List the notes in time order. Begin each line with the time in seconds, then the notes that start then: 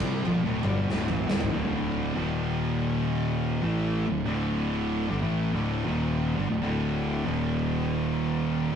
0.00 C2 C3 G3 C4, kick, crash
0.25 A#1 A#2 F3, high tom
0.43 D1 D2 A2
0.63 G1 G2 D3 G3, mid tom
0.90 D1 D2 A2, snare
1.08 A1 A2 E3, mid tom
1.28 D1 D2 A2, snare
1.40 G#1 G#2 D#3, floor tom
1.52 D1 D2 A2 D3
2.15 D#1 D#2 A#2 D#3
3.62 A1 A2 E3 A3
4.07 D1 D2 A2
4.27 D1 D2 A2 D3
5.09 G1 G2 D3
5.22 A1 A2 E3 A3
5.54 D1 D2 A2 D3
5.85 D#1 D#2 A#2 D#3
6.38 G1 G2 D3
6.50 D1 D2 A2
6.62 D1 D2 A2 D3
7.25 D#1 D#2 A#2 D#3
8.72 A2